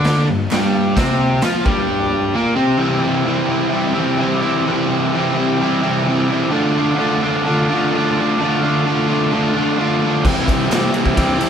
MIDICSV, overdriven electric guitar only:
0, 0, Header, 1, 2, 480
1, 0, Start_track
1, 0, Tempo, 464037
1, 995, Time_signature, 4, 2, 24, 8
1, 11890, End_track
2, 0, Start_track
2, 0, Title_t, "Overdriven electric guitar"
2, 0, Program_c, 0, 29
2, 0, Note_on_c, 0, 50, 89
2, 0, Note_on_c, 0, 62, 100
2, 276, Note_off_c, 0, 50, 0
2, 281, Note_off_c, 0, 62, 0
2, 297, Note_on_c, 0, 43, 75
2, 479, Note_off_c, 0, 43, 0
2, 534, Note_on_c, 0, 43, 100
2, 544, Note_on_c, 0, 55, 96
2, 988, Note_on_c, 0, 48, 98
2, 994, Note_on_c, 0, 60, 103
2, 996, Note_off_c, 0, 43, 0
2, 1001, Note_off_c, 0, 55, 0
2, 1462, Note_off_c, 0, 48, 0
2, 1465, Note_off_c, 0, 60, 0
2, 1479, Note_on_c, 0, 53, 81
2, 1491, Note_on_c, 0, 65, 85
2, 1698, Note_on_c, 0, 43, 92
2, 1705, Note_on_c, 0, 55, 102
2, 1707, Note_off_c, 0, 53, 0
2, 1713, Note_off_c, 0, 65, 0
2, 2414, Note_off_c, 0, 43, 0
2, 2417, Note_off_c, 0, 55, 0
2, 2420, Note_on_c, 0, 46, 87
2, 2435, Note_on_c, 0, 58, 107
2, 2641, Note_off_c, 0, 46, 0
2, 2644, Note_off_c, 0, 58, 0
2, 2645, Note_on_c, 0, 48, 87
2, 2648, Note_on_c, 0, 60, 106
2, 2860, Note_off_c, 0, 48, 0
2, 2872, Note_on_c, 0, 48, 93
2, 2884, Note_on_c, 0, 52, 100
2, 2889, Note_off_c, 0, 60, 0
2, 2898, Note_on_c, 0, 55, 97
2, 2906, Note_on_c, 0, 60, 96
2, 2924, Note_on_c, 0, 64, 102
2, 3118, Note_off_c, 0, 64, 0
2, 3122, Note_on_c, 0, 64, 77
2, 3140, Note_off_c, 0, 60, 0
2, 3144, Note_on_c, 0, 60, 67
2, 3174, Note_off_c, 0, 55, 0
2, 3178, Note_on_c, 0, 55, 66
2, 3359, Note_off_c, 0, 48, 0
2, 3364, Note_on_c, 0, 48, 94
2, 3377, Note_off_c, 0, 52, 0
2, 3381, Note_on_c, 0, 52, 86
2, 3387, Note_off_c, 0, 55, 0
2, 3392, Note_on_c, 0, 55, 97
2, 3396, Note_off_c, 0, 60, 0
2, 3400, Note_on_c, 0, 60, 97
2, 3408, Note_off_c, 0, 64, 0
2, 3412, Note_on_c, 0, 64, 91
2, 3606, Note_off_c, 0, 64, 0
2, 3610, Note_on_c, 0, 64, 86
2, 3625, Note_off_c, 0, 60, 0
2, 3629, Note_on_c, 0, 60, 70
2, 3651, Note_off_c, 0, 55, 0
2, 3655, Note_on_c, 0, 55, 56
2, 3820, Note_off_c, 0, 52, 0
2, 3824, Note_on_c, 0, 52, 82
2, 3835, Note_off_c, 0, 55, 0
2, 3847, Note_on_c, 0, 55, 78
2, 3853, Note_off_c, 0, 60, 0
2, 3860, Note_off_c, 0, 64, 0
2, 3866, Note_on_c, 0, 60, 76
2, 3872, Note_on_c, 0, 64, 93
2, 4069, Note_off_c, 0, 60, 0
2, 4069, Note_off_c, 0, 64, 0
2, 4081, Note_on_c, 0, 64, 95
2, 4082, Note_on_c, 0, 60, 91
2, 4085, Note_off_c, 0, 55, 0
2, 4097, Note_off_c, 0, 52, 0
2, 4097, Note_on_c, 0, 55, 82
2, 4109, Note_on_c, 0, 52, 80
2, 4124, Note_off_c, 0, 48, 0
2, 4128, Note_on_c, 0, 48, 81
2, 4301, Note_off_c, 0, 52, 0
2, 4313, Note_on_c, 0, 52, 76
2, 4331, Note_off_c, 0, 55, 0
2, 4339, Note_off_c, 0, 60, 0
2, 4343, Note_on_c, 0, 55, 89
2, 4351, Note_on_c, 0, 60, 85
2, 4356, Note_off_c, 0, 64, 0
2, 4368, Note_on_c, 0, 64, 80
2, 4542, Note_off_c, 0, 64, 0
2, 4554, Note_on_c, 0, 64, 87
2, 4571, Note_off_c, 0, 60, 0
2, 4583, Note_on_c, 0, 60, 72
2, 4594, Note_off_c, 0, 48, 0
2, 4597, Note_off_c, 0, 55, 0
2, 4610, Note_on_c, 0, 55, 65
2, 4806, Note_off_c, 0, 52, 0
2, 4815, Note_on_c, 0, 48, 96
2, 4825, Note_off_c, 0, 55, 0
2, 4829, Note_on_c, 0, 52, 103
2, 4837, Note_off_c, 0, 60, 0
2, 4837, Note_on_c, 0, 55, 103
2, 4849, Note_on_c, 0, 60, 98
2, 4854, Note_off_c, 0, 64, 0
2, 4866, Note_on_c, 0, 64, 116
2, 5023, Note_off_c, 0, 64, 0
2, 5035, Note_on_c, 0, 64, 82
2, 5051, Note_off_c, 0, 60, 0
2, 5063, Note_on_c, 0, 60, 70
2, 5073, Note_off_c, 0, 55, 0
2, 5085, Note_on_c, 0, 55, 61
2, 5290, Note_off_c, 0, 48, 0
2, 5302, Note_on_c, 0, 48, 97
2, 5304, Note_off_c, 0, 52, 0
2, 5312, Note_off_c, 0, 55, 0
2, 5320, Note_on_c, 0, 52, 90
2, 5324, Note_on_c, 0, 55, 84
2, 5328, Note_off_c, 0, 60, 0
2, 5338, Note_off_c, 0, 64, 0
2, 5340, Note_on_c, 0, 60, 96
2, 5350, Note_on_c, 0, 64, 103
2, 5512, Note_off_c, 0, 64, 0
2, 5525, Note_on_c, 0, 64, 74
2, 5547, Note_off_c, 0, 60, 0
2, 5556, Note_off_c, 0, 55, 0
2, 5560, Note_on_c, 0, 60, 76
2, 5568, Note_on_c, 0, 55, 69
2, 5756, Note_off_c, 0, 52, 0
2, 5769, Note_on_c, 0, 52, 80
2, 5781, Note_off_c, 0, 48, 0
2, 5782, Note_off_c, 0, 55, 0
2, 5795, Note_on_c, 0, 55, 79
2, 5796, Note_off_c, 0, 60, 0
2, 5808, Note_on_c, 0, 60, 82
2, 5818, Note_off_c, 0, 64, 0
2, 5830, Note_on_c, 0, 64, 95
2, 6003, Note_off_c, 0, 64, 0
2, 6015, Note_on_c, 0, 64, 96
2, 6018, Note_off_c, 0, 60, 0
2, 6031, Note_off_c, 0, 55, 0
2, 6031, Note_on_c, 0, 60, 92
2, 6041, Note_off_c, 0, 52, 0
2, 6043, Note_on_c, 0, 55, 88
2, 6054, Note_on_c, 0, 52, 85
2, 6068, Note_on_c, 0, 48, 80
2, 6239, Note_off_c, 0, 52, 0
2, 6252, Note_on_c, 0, 52, 82
2, 6262, Note_off_c, 0, 55, 0
2, 6274, Note_on_c, 0, 55, 83
2, 6284, Note_off_c, 0, 60, 0
2, 6296, Note_on_c, 0, 60, 85
2, 6298, Note_off_c, 0, 64, 0
2, 6310, Note_on_c, 0, 64, 90
2, 6482, Note_off_c, 0, 64, 0
2, 6495, Note_on_c, 0, 64, 80
2, 6511, Note_off_c, 0, 60, 0
2, 6524, Note_off_c, 0, 48, 0
2, 6524, Note_on_c, 0, 60, 61
2, 6525, Note_off_c, 0, 55, 0
2, 6537, Note_on_c, 0, 55, 62
2, 6719, Note_off_c, 0, 52, 0
2, 6723, Note_off_c, 0, 64, 0
2, 6723, Note_on_c, 0, 50, 98
2, 6736, Note_off_c, 0, 55, 0
2, 6737, Note_off_c, 0, 60, 0
2, 6740, Note_on_c, 0, 57, 102
2, 6756, Note_on_c, 0, 62, 106
2, 6766, Note_on_c, 0, 65, 101
2, 6978, Note_off_c, 0, 65, 0
2, 6983, Note_on_c, 0, 65, 79
2, 7002, Note_off_c, 0, 62, 0
2, 7006, Note_on_c, 0, 62, 84
2, 7025, Note_off_c, 0, 57, 0
2, 7029, Note_on_c, 0, 57, 70
2, 7195, Note_off_c, 0, 50, 0
2, 7199, Note_on_c, 0, 50, 96
2, 7219, Note_off_c, 0, 57, 0
2, 7224, Note_off_c, 0, 62, 0
2, 7224, Note_on_c, 0, 57, 86
2, 7228, Note_on_c, 0, 62, 97
2, 7245, Note_off_c, 0, 65, 0
2, 7249, Note_on_c, 0, 65, 97
2, 7455, Note_off_c, 0, 65, 0
2, 7459, Note_on_c, 0, 65, 78
2, 7473, Note_off_c, 0, 62, 0
2, 7477, Note_on_c, 0, 62, 63
2, 7496, Note_off_c, 0, 57, 0
2, 7500, Note_on_c, 0, 57, 71
2, 7694, Note_off_c, 0, 50, 0
2, 7698, Note_on_c, 0, 50, 89
2, 7702, Note_off_c, 0, 57, 0
2, 7715, Note_on_c, 0, 57, 82
2, 7716, Note_off_c, 0, 62, 0
2, 7726, Note_off_c, 0, 65, 0
2, 7728, Note_on_c, 0, 62, 91
2, 7738, Note_on_c, 0, 65, 99
2, 7934, Note_off_c, 0, 65, 0
2, 7947, Note_on_c, 0, 65, 101
2, 7950, Note_off_c, 0, 62, 0
2, 7958, Note_off_c, 0, 57, 0
2, 7963, Note_on_c, 0, 62, 77
2, 7971, Note_on_c, 0, 57, 80
2, 7988, Note_off_c, 0, 50, 0
2, 8000, Note_on_c, 0, 50, 84
2, 8186, Note_off_c, 0, 50, 0
2, 8198, Note_on_c, 0, 50, 83
2, 8221, Note_off_c, 0, 57, 0
2, 8233, Note_off_c, 0, 62, 0
2, 8233, Note_on_c, 0, 57, 82
2, 8243, Note_off_c, 0, 65, 0
2, 8246, Note_on_c, 0, 62, 87
2, 8255, Note_on_c, 0, 65, 92
2, 8427, Note_off_c, 0, 65, 0
2, 8439, Note_on_c, 0, 65, 73
2, 8468, Note_off_c, 0, 62, 0
2, 8480, Note_on_c, 0, 62, 69
2, 8484, Note_off_c, 0, 57, 0
2, 8497, Note_on_c, 0, 57, 70
2, 8660, Note_off_c, 0, 50, 0
2, 8672, Note_on_c, 0, 50, 91
2, 8677, Note_off_c, 0, 57, 0
2, 8689, Note_on_c, 0, 57, 92
2, 8696, Note_off_c, 0, 62, 0
2, 8702, Note_off_c, 0, 65, 0
2, 8708, Note_on_c, 0, 62, 103
2, 8715, Note_on_c, 0, 65, 103
2, 8902, Note_off_c, 0, 65, 0
2, 8915, Note_on_c, 0, 65, 78
2, 8927, Note_off_c, 0, 62, 0
2, 8940, Note_on_c, 0, 62, 76
2, 8954, Note_off_c, 0, 57, 0
2, 8967, Note_on_c, 0, 57, 66
2, 9144, Note_off_c, 0, 50, 0
2, 9152, Note_off_c, 0, 57, 0
2, 9156, Note_on_c, 0, 50, 89
2, 9162, Note_off_c, 0, 62, 0
2, 9164, Note_on_c, 0, 57, 89
2, 9175, Note_on_c, 0, 62, 97
2, 9193, Note_off_c, 0, 65, 0
2, 9205, Note_on_c, 0, 65, 99
2, 9378, Note_off_c, 0, 65, 0
2, 9391, Note_on_c, 0, 65, 89
2, 9398, Note_off_c, 0, 62, 0
2, 9410, Note_on_c, 0, 62, 70
2, 9415, Note_off_c, 0, 57, 0
2, 9428, Note_on_c, 0, 57, 68
2, 9616, Note_off_c, 0, 50, 0
2, 9628, Note_on_c, 0, 50, 80
2, 9633, Note_off_c, 0, 57, 0
2, 9645, Note_on_c, 0, 57, 92
2, 9650, Note_off_c, 0, 62, 0
2, 9659, Note_off_c, 0, 65, 0
2, 9662, Note_on_c, 0, 62, 79
2, 9671, Note_on_c, 0, 65, 88
2, 9850, Note_off_c, 0, 65, 0
2, 9862, Note_on_c, 0, 65, 86
2, 9869, Note_off_c, 0, 62, 0
2, 9882, Note_on_c, 0, 62, 83
2, 9893, Note_off_c, 0, 57, 0
2, 9894, Note_off_c, 0, 50, 0
2, 9906, Note_on_c, 0, 57, 74
2, 9907, Note_on_c, 0, 50, 77
2, 10092, Note_off_c, 0, 50, 0
2, 10104, Note_on_c, 0, 50, 74
2, 10111, Note_off_c, 0, 57, 0
2, 10123, Note_off_c, 0, 62, 0
2, 10124, Note_on_c, 0, 57, 77
2, 10129, Note_off_c, 0, 65, 0
2, 10135, Note_on_c, 0, 62, 73
2, 10141, Note_on_c, 0, 65, 95
2, 10348, Note_off_c, 0, 65, 0
2, 10361, Note_on_c, 0, 65, 76
2, 10371, Note_off_c, 0, 62, 0
2, 10383, Note_on_c, 0, 62, 67
2, 10396, Note_off_c, 0, 57, 0
2, 10409, Note_on_c, 0, 57, 66
2, 10573, Note_off_c, 0, 50, 0
2, 10581, Note_off_c, 0, 65, 0
2, 10592, Note_off_c, 0, 62, 0
2, 10592, Note_on_c, 0, 48, 90
2, 10605, Note_off_c, 0, 57, 0
2, 10609, Note_on_c, 0, 52, 99
2, 10624, Note_on_c, 0, 55, 93
2, 10639, Note_on_c, 0, 60, 94
2, 10656, Note_on_c, 0, 64, 109
2, 10839, Note_off_c, 0, 64, 0
2, 10843, Note_on_c, 0, 64, 80
2, 10856, Note_off_c, 0, 60, 0
2, 10860, Note_on_c, 0, 60, 67
2, 10882, Note_off_c, 0, 55, 0
2, 10886, Note_on_c, 0, 55, 69
2, 11055, Note_off_c, 0, 48, 0
2, 11059, Note_on_c, 0, 48, 92
2, 11072, Note_off_c, 0, 52, 0
2, 11076, Note_on_c, 0, 52, 92
2, 11085, Note_off_c, 0, 55, 0
2, 11089, Note_on_c, 0, 55, 97
2, 11091, Note_off_c, 0, 60, 0
2, 11096, Note_on_c, 0, 60, 103
2, 11101, Note_off_c, 0, 64, 0
2, 11106, Note_on_c, 0, 64, 91
2, 11304, Note_off_c, 0, 64, 0
2, 11308, Note_on_c, 0, 64, 71
2, 11336, Note_off_c, 0, 60, 0
2, 11340, Note_on_c, 0, 60, 67
2, 11360, Note_off_c, 0, 55, 0
2, 11364, Note_on_c, 0, 55, 67
2, 11533, Note_off_c, 0, 52, 0
2, 11537, Note_on_c, 0, 52, 86
2, 11542, Note_off_c, 0, 55, 0
2, 11550, Note_off_c, 0, 60, 0
2, 11554, Note_on_c, 0, 55, 80
2, 11562, Note_on_c, 0, 60, 97
2, 11567, Note_off_c, 0, 64, 0
2, 11579, Note_on_c, 0, 64, 89
2, 11760, Note_off_c, 0, 64, 0
2, 11769, Note_off_c, 0, 60, 0
2, 11773, Note_on_c, 0, 64, 92
2, 11782, Note_on_c, 0, 60, 97
2, 11787, Note_off_c, 0, 55, 0
2, 11797, Note_off_c, 0, 52, 0
2, 11800, Note_on_c, 0, 55, 87
2, 11810, Note_on_c, 0, 52, 86
2, 11813, Note_off_c, 0, 48, 0
2, 11818, Note_on_c, 0, 48, 64
2, 11890, Note_off_c, 0, 48, 0
2, 11890, Note_off_c, 0, 52, 0
2, 11890, Note_off_c, 0, 55, 0
2, 11890, Note_off_c, 0, 60, 0
2, 11890, Note_off_c, 0, 64, 0
2, 11890, End_track
0, 0, End_of_file